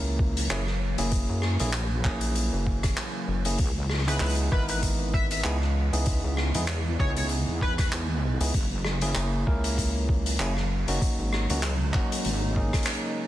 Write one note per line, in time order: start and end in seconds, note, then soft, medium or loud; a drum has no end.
0.00 0.48 C#2 loud
0.00 3.56 C#3 medium
0.00 10.98 E3 medium
0.00 3.55 F#3 medium
0.00 0.47 A#3 medium
0.00 3.56 A#3 medium
0.00 0.47 C#4 medium
0.00 0.47 E4 medium
0.00 0.47 A#4 loud
0.19 kick loud
0.37 closed hi-hat medium
0.50 0.96 F#1 loud
0.50 0.62 A#3 loud
0.50 0.62 C#4 medium
0.50 0.62 E4 medium
0.50 0.62 G#4 loud
0.50 clap loud
0.50 closed hi-hat medium
0.67 cross-stick soft
0.98 1.27 F#1 loud
0.98 1.56 A#3 loud
0.98 1.56 C#4 medium
0.98 1.56 E4 medium
0.98 1.56 G#4 loud
0.98 closed hi-hat medium
1.11 kick loud
1.11 closed hi-hat medium
1.29 1.57 F#2 loud
1.42 cross-stick soft
1.59 2.03 A#1 loud
1.59 1.69 A#3 loud
1.59 1.69 C#4 medium
1.59 1.69 E4 medium
1.59 1.69 G#4 loud
1.59 closed hi-hat medium
1.73 clap loud
1.73 closed hi-hat medium
2.05 2.50 A#1 medium
2.05 3.42 A#3 medium
2.05 3.42 C#4 medium
2.05 3.42 E4 medium
2.05 3.42 G#4 loud
2.05 kick loud
2.05 clap medium
2.21 closed hi-hat medium
2.35 closed hi-hat medium
2.53 2.95 F#1 loud
2.67 kick medium
2.83 kick loud
2.83 cross-stick medium
2.83 closed hi-hat medium
2.97 clap loud
2.97 closed hi-hat medium
3.28 3.57 F#1 loud
3.45 3.58 A#3 medium
3.45 3.58 C#4 medium
3.45 3.58 E4 medium
3.45 3.58 G#4 medium
3.45 closed hi-hat medium
3.58 4.19 C#2 loud
3.58 13.27 C#3 medium
3.58 8.50 G#3 medium
3.58 8.50 B3 medium
3.58 kick loud
3.58 closed hi-hat medium
3.90 cross-stick soft
3.94 cross-stick soft
3.98 cross-stick soft
4.03 cross-stick soft
4.07 4.49 B3 loud
4.07 4.49 D#4 medium
4.07 4.49 E4 medium
4.07 4.49 G#4 loud
4.07 4.16 B4 medium
4.07 cross-stick soft
4.07 closed hi-hat medium
4.10 cross-stick soft
4.14 cross-stick soft
4.17 4.50 C#2 loud
4.17 cross-stick soft
4.17 clap loud
4.17 closed hi-hat soft
4.21 4.32 B4 medium
4.21 closed hi-hat soft
4.26 closed hi-hat soft
4.29 closed hi-hat soft
4.29 closed hi-hat medium
4.35 closed hi-hat medium
4.52 5.43 G#1 medium
4.52 5.42 B3 medium
4.52 5.41 D#4 medium
4.52 5.42 E4 medium
4.52 5.42 A#4 loud
4.52 4.63 B4 medium
4.52 kick loud
4.68 4.78 B4 medium
4.68 closed hi-hat medium
4.83 kick medium
4.83 closed hi-hat medium
5.14 5.25 E5 medium
5.14 kick loud
5.31 5.40 E5 medium
5.31 closed hi-hat medium
5.44 5.90 C#2 loud
5.44 5.57 B3 medium
5.44 5.57 D#4 medium
5.44 5.57 E4 medium
5.44 5.57 G#4 loud
5.44 clap loud
5.44 closed hi-hat medium
5.62 cross-stick soft
5.93 6.21 C#2 loud
5.93 6.51 B3 medium
5.93 6.51 D#4 medium
5.93 6.51 E4 medium
5.93 6.51 G#4 loud
5.93 closed hi-hat medium
6.06 kick loud
6.06 closed hi-hat medium
6.24 6.52 C#2 loud
6.37 cross-stick medium
6.54 6.97 E2 loud
6.54 6.64 B3 medium
6.54 6.64 D#4 medium
6.54 6.64 E4 medium
6.54 6.64 G#4 loud
6.54 closed hi-hat medium
6.68 clap loud
6.68 closed hi-hat medium
6.99 7.45 C#2 loud
6.99 8.36 B3 medium
6.99 8.36 D#4 medium
6.99 8.37 E4 medium
6.99 8.36 G#4 loud
6.99 7.11 C#5 medium
6.99 kick loud
7.16 7.26 C#5 medium
7.16 closed hi-hat medium
7.29 closed hi-hat medium
7.48 8.38 E2 medium
7.61 7.73 B4 medium
7.61 kick medium
7.78 7.88 B4 medium
7.78 kick loud
7.78 cross-stick medium
7.78 closed hi-hat medium
7.92 clap loud
7.92 closed hi-hat medium
8.41 8.52 C#2 loud
8.41 8.53 B3 medium
8.41 8.53 D#4 medium
8.41 8.53 E4 medium
8.41 8.53 G#4 medium
8.41 closed hi-hat medium
8.43 closed hi-hat medium
8.43 closed hi-hat soft
8.48 closed hi-hat soft
8.50 closed hi-hat soft
8.52 13.27 F#3 medium
8.52 10.99 A#3 medium
8.52 closed hi-hat soft
8.54 9.14 F#1 loud
8.54 kick loud
8.54 closed hi-hat medium
8.85 cross-stick medium
9.01 9.44 A#3 medium
9.01 9.44 C#4 medium
9.01 9.44 E4 medium
9.01 9.44 G#4 loud
9.01 closed hi-hat medium
9.15 9.45 F#1 loud
9.15 clap loud
9.15 closed hi-hat medium
9.47 10.38 C#2 loud
9.47 10.37 A#3 medium
9.47 10.37 C#4 medium
9.47 10.37 E4 medium
9.47 10.37 A#4 loud
9.47 kick loud
9.64 closed hi-hat medium
9.78 kick medium
9.78 closed hi-hat medium
10.09 kick loud
10.26 closed hi-hat medium
10.39 10.85 F#1 loud
10.39 10.52 A#3 medium
10.39 10.52 C#4 medium
10.39 10.52 E4 medium
10.39 10.52 G#4 loud
10.39 clap loud
10.39 closed hi-hat medium
10.57 cross-stick soft
10.88 10.99 F#1 loud
10.88 11.46 A#3 medium
10.88 11.46 C#4 medium
10.88 11.46 D#4 medium
10.88 11.46 F#4 loud
10.88 closed hi-hat medium
11.00 13.27 G#3 medium
11.00 13.27 D#4 medium
11.00 kick loud
11.00 closed hi-hat medium
11.19 11.47 G#1 loud
11.33 cross-stick medium
11.50 11.92 C#2 loud
11.50 11.59 A#3 medium
11.50 11.59 C#4 medium
11.50 11.59 D#4 medium
11.50 11.59 F#4 loud
11.50 closed hi-hat medium
11.63 clap loud
11.63 closed hi-hat medium
11.94 12.54 A#3 medium
11.94 12.54 C#4 medium
11.94 12.54 D#4 medium
11.94 12.54 F#4 loud
11.94 kick loud
11.94 clap medium
12.12 closed hi-hat medium
12.25 12.71 G#1 loud
12.25 closed hi-hat medium
12.56 13.27 A#3 medium
12.56 13.27 C#4 medium
12.56 13.27 D#4 medium
12.56 13.27 G#4 loud
12.56 kick medium
12.73 kick loud
12.73 cross-stick medium
12.73 closed hi-hat medium
12.83 clap loud
12.83 closed hi-hat medium
12.87 closed hi-hat medium
12.93 closed hi-hat soft